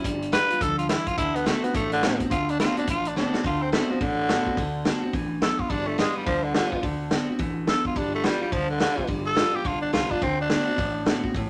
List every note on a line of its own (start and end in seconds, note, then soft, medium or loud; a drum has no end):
0.04 0.37 G1 medium
0.04 0.31 G2 medium
0.04 0.31 D3 loud
0.04 0.31 G3 loud
0.04 kick loud
0.04 closed hi-hat medium
0.22 closed hi-hat medium
0.32 0.59 E3 medium
0.32 0.49 G3 medium
0.32 0.50 B3 medium
0.32 0.49 F4 loud
0.32 0.63 B4 loud
0.32 snare loud
0.32 closed hi-hat medium
0.50 0.62 B3 soft
0.50 0.61 F4 medium
0.50 muted upright bass stroke medium
0.50 closed hi-hat medium
0.61 0.93 D2 medium
0.61 0.88 G2 medium
0.61 0.88 D3 loud
0.61 0.89 F3 medium
0.61 0.78 A4 loud
0.61 kick loud
0.61 closed hi-hat loud
0.78 0.89 F4 medium
0.78 closed hi-hat medium
0.89 1.16 G2 medium
0.89 1.17 E3 medium
0.89 1.16 E3 medium
0.89 1.09 E4 medium
0.89 snare loud
0.89 closed hi-hat medium
1.06 1.17 F4 loud
1.06 muted upright bass stroke medium
1.06 kick medium
1.06 closed hi-hat medium
1.17 1.50 D2 loud
1.17 1.44 D3 medium
1.17 1.44 A3 loud
1.17 1.37 E4 loud
1.17 kick loud
1.17 closed hi-hat medium
1.36 1.48 B3 medium
1.36 closed hi-hat medium
1.46 1.63 D3 medium
1.46 1.72 D3 medium
1.46 1.63 A3 loud
1.46 1.65 A3 loud
1.46 1.73 B3 loud
1.46 1.64 C4 medium
1.46 1.62 F#4 loud
1.46 snare loud
1.46 closed hi-hat medium
1.63 1.74 B3 medium
1.63 1.75 C4 medium
1.63 1.74 F#4 medium
1.63 muted upright bass stroke medium
1.63 closed hi-hat medium
1.74 2.07 A1 medium
1.74 2.29 A2 medium
1.74 2.01 D3 medium
1.74 2.01 A3 medium
1.74 1.92 A3 loud
1.74 kick loud
1.74 closed hi-hat medium
1.92 2.20 D3 loud
1.92 closed hi-hat medium
2.03 2.20 D3 medium
2.03 2.29 D3 medium
2.03 2.20 A3 medium
2.03 2.30 B3 medium
2.03 2.21 C4 medium
2.03 2.21 F#4 medium
2.03 snare loud
2.03 closed hi-hat medium
2.20 2.32 C4 medium
2.20 2.31 F#4 medium
2.20 muted upright bass stroke medium
2.20 kick medium
2.20 closed hi-hat medium
2.31 2.63 D2 loud
2.31 2.57 D3 medium
2.31 2.59 D3 medium
2.31 2.58 A3 medium
2.31 2.52 F4 loud
2.31 kick loud
2.31 closed hi-hat medium
2.49 2.60 D4 loud
2.49 closed hi-hat medium
2.59 2.86 D3 medium
2.59 2.77 D3 medium
2.59 2.77 A3 medium
2.59 2.86 B3 medium
2.59 2.77 C4 medium
2.59 2.77 F4 loud
2.59 2.76 F#4 loud
2.59 snare loud
2.59 closed hi-hat medium
2.77 2.88 C4 soft
2.77 2.88 D4 medium
2.77 2.87 F#4 medium
2.77 muted upright bass stroke medium
2.77 closed hi-hat medium
2.87 3.19 A1 medium
2.87 3.42 A2 medium
2.87 3.14 D3 medium
2.87 3.14 A3 medium
2.87 3.09 F4 loud
2.87 kick loud
2.87 closed hi-hat medium
3.05 3.17 D4 medium
3.05 closed hi-hat medium
3.16 3.33 D3 medium
3.16 3.43 D3 medium
3.16 3.33 A3 medium
3.16 3.43 B3 medium
3.16 3.33 C4 loud
3.16 3.44 D4 medium
3.16 3.32 F#4 medium
3.16 snare medium
3.33 3.45 C4 medium
3.33 3.44 F#4 medium
3.33 muted upright bass stroke medium
3.33 snare medium
3.44 3.76 D2 medium
3.44 3.70 D3 medium
3.44 3.71 D3 medium
3.44 3.70 A3 medium
3.44 3.64 F4 medium
3.44 kick loud
3.44 open hi-hat medium
3.62 3.72 C4 medium
3.72 3.89 D3 medium
3.72 3.99 D3 medium
3.72 3.92 A3 medium
3.72 3.90 A3 medium
3.72 3.99 B3 loud
3.72 3.90 C4 medium
3.72 3.89 F#4 medium
3.72 snare loud
3.72 open hi-hat soft
3.90 4.00 F3 medium
3.90 4.02 C4 medium
3.90 4.01 F#4 medium
3.90 muted upright bass stroke medium
4.01 4.33 A1 medium
4.01 4.55 A2 medium
4.01 4.83 D3 loud
4.01 4.27 D3 medium
4.01 4.28 A3 medium
4.01 kick loud
4.01 open hi-hat medium
4.29 4.46 D3 medium
4.29 4.56 D3 medium
4.29 4.46 A3 medium
4.29 4.56 B3 medium
4.29 4.47 C4 medium
4.29 4.46 F#4 medium
4.29 snare loud
4.29 open hi-hat medium
4.46 4.58 C4 soft
4.46 4.57 F#4 medium
4.46 muted upright bass stroke medium
4.46 kick medium
4.57 4.89 D2 loud
4.57 4.83 D3 medium
4.57 4.84 D3 medium
4.57 4.83 A3 loud
4.57 kick loud
4.57 open hi-hat medium
4.85 5.11 D3 medium
4.85 5.02 D3 medium
4.85 5.03 A3 medium
4.85 5.11 B3 medium
4.85 5.03 C4 loud
4.85 5.02 F#4 medium
4.85 snare loud
4.85 open hi-hat medium
5.03 5.14 C4 medium
5.03 5.13 F#4 medium
5.03 muted upright bass stroke medium
5.13 5.46 A1 medium
5.13 5.40 D3 medium
5.13 5.41 E3 medium
5.13 5.40 A3 medium
5.13 kick loud
5.13 open hi-hat medium
5.41 5.68 D3 medium
5.41 5.69 F#3 medium
5.41 5.68 B3 medium
5.41 5.61 A4 medium
5.41 snare loud
5.41 open hi-hat medium
5.59 5.71 F4 medium
5.59 muted upright bass stroke medium
5.59 kick medium
5.69 6.02 G1 medium
5.69 5.96 G2 medium
5.69 5.96 D3 loud
5.69 5.97 G3 medium
5.69 5.89 D4 loud
5.69 kick loud
5.69 open hi-hat medium
5.87 5.98 A3 medium
5.98 6.24 G2 medium
5.98 6.25 E3 medium
5.98 6.25 G3 medium
5.98 6.18 G#3 loud
5.98 6.26 B3 medium
5.98 6.27 F4 medium
5.98 snare loud
5.98 open hi-hat medium
6.16 6.25 G3 medium
6.16 muted upright bass stroke medium
6.26 6.58 D2 medium
6.26 6.52 G2 medium
6.26 6.81 D3 medium
6.26 6.53 D3 medium
6.26 6.45 F3 loud
6.26 kick loud
6.26 open hi-hat medium
6.44 6.54 D3 medium
6.54 6.81 G2 medium
6.54 6.82 D3 medium
6.54 6.81 E3 medium
6.54 6.72 G3 medium
6.54 6.72 B3 loud
6.54 6.71 F4 loud
6.54 snare loud
6.54 open hi-hat soft
6.72 6.83 B3 medium
6.72 6.82 F4 medium
6.72 muted upright bass stroke medium
6.72 kick medium
6.83 7.15 D2 loud
6.83 7.09 D3 medium
6.83 7.10 D3 medium
6.83 7.09 A3 loud
6.83 kick loud
6.83 open hi-hat medium
7.11 7.28 D3 medium
7.11 7.38 D3 medium
7.11 7.28 A3 medium
7.11 7.38 B3 loud
7.11 7.29 C4 medium
7.11 7.28 F#4 loud
7.11 snare loud
7.11 open hi-hat medium
7.29 7.41 C4 soft
7.29 7.39 F#4 medium
7.29 muted upright bass stroke medium
7.39 7.71 A1 medium
7.39 7.66 D3 medium
7.39 7.66 E3 medium
7.39 7.66 A3 loud
7.39 kick loud
7.39 open hi-hat medium
7.67 7.93 D3 medium
7.67 7.96 F#3 medium
7.67 7.94 B3 medium
7.67 7.85 A4 medium
7.67 snare loud
7.67 open hi-hat medium
7.85 7.99 F4 medium
7.85 muted upright bass stroke medium
7.85 kick medium
7.96 8.28 G1 medium
7.96 8.22 G2 medium
7.96 8.22 D3 medium
7.96 8.22 G3 medium
7.96 8.14 D4 medium
7.96 kick loud
7.96 open hi-hat medium
8.15 8.27 A3 loud
8.24 8.50 G2 medium
8.24 8.51 E3 loud
8.24 8.41 G3 medium
8.24 8.41 G3 loud
8.24 8.41 B3 medium
8.24 8.40 F4 loud
8.24 snare loud
8.24 open hi-hat medium
8.41 8.54 G3 medium
8.41 8.53 B3 soft
8.41 8.52 F4 medium
8.41 muted upright bass stroke medium
8.52 8.84 D2 medium
8.52 8.78 G2 medium
8.52 9.07 D3 medium
8.52 8.79 D3 medium
8.52 8.69 F3 loud
8.52 kick loud
8.52 open hi-hat medium
8.70 8.80 D3 medium
8.79 9.08 D3 loud
8.79 9.07 E3 medium
8.79 8.97 G3 medium
8.79 8.97 B3 medium
8.79 8.95 F4 medium
8.79 snare loud
8.79 open hi-hat medium
8.96 9.09 B3 soft
8.96 9.07 F4 medium
8.96 muted upright bass stroke medium
8.96 kick medium
9.07 9.41 G1 loud
9.07 9.35 G2 medium
9.07 9.35 D3 loud
9.07 9.34 G3 medium
9.07 kick loud
9.07 open hi-hat soft
9.26 9.57 A4 medium
9.35 9.63 G2 medium
9.35 9.63 E3 loud
9.35 9.53 G3 medium
9.35 9.54 B3 medium
9.35 9.52 F4 loud
9.35 snare loud
9.35 open hi-hat medium
9.53 9.65 B3 medium
9.53 9.64 F4 medium
9.53 9.68 G4 medium
9.53 muted upright bass stroke medium
9.65 9.80 B1 medium
9.65 9.91 G2 medium
9.65 10.20 D3 medium
9.65 9.92 D3 loud
9.65 9.81 F4 medium
9.65 kick loud
9.65 open hi-hat medium
9.82 9.93 D4 medium
9.82 muted upright bass stroke medium
9.93 10.08 C2 loud
9.93 10.19 G2 medium
9.93 10.20 E3 medium
9.93 10.10 G3 medium
9.93 10.11 B3 loud
9.93 10.12 F4 medium
9.93 10.10 F4 medium
9.93 snare loud
9.93 open hi-hat medium
10.11 10.22 B3 medium
10.11 10.24 D4 loud
10.11 10.21 F4 medium
10.11 muted upright bass stroke medium
10.11 kick medium
10.22 10.54 D2 loud
10.22 10.48 D3 medium
10.22 10.49 D3 loud
10.22 10.48 A3 loud
10.22 10.39 C4 loud
10.22 kick loud
10.22 open hi-hat medium
10.41 11.22 D4 loud
10.50 10.76 D3 medium
10.50 10.67 D3 medium
10.50 10.67 A3 loud
10.50 10.76 B3 medium
10.50 10.68 C4 loud
10.50 10.67 F#4 medium
10.50 snare loud
10.50 open hi-hat medium
10.67 10.79 C4 medium
10.67 10.78 F#4 medium
10.67 muted upright bass stroke medium
10.77 11.10 A1 medium
10.77 11.33 A2 loud
10.77 11.04 D3 medium
10.77 11.04 A3 loud
10.77 kick loud
10.77 open hi-hat medium
11.06 11.23 D3 medium
11.06 11.32 D3 medium
11.06 11.23 A3 medium
11.06 11.33 B3 loud
11.06 11.24 C4 loud
11.06 11.23 F#4 medium
11.06 snare loud
11.06 open hi-hat soft
11.23 11.35 C4 medium
11.23 11.34 F#4 medium
11.23 muted upright bass stroke medium
11.23 kick medium
11.34 11.50 A1 loud
11.34 11.50 A2 medium
11.34 11.50 E3 loud
11.34 kick loud
11.34 open hi-hat soft